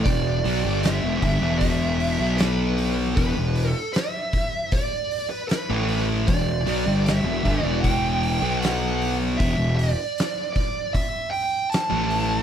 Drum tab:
HH |oooooooo|oooooooo|oooooooo|oooooooo|
SD |--o---o-|--o---o-|--o---o-|--o---o-|
BD |o--oo---|o--oo---|o--oo---|o--oo---|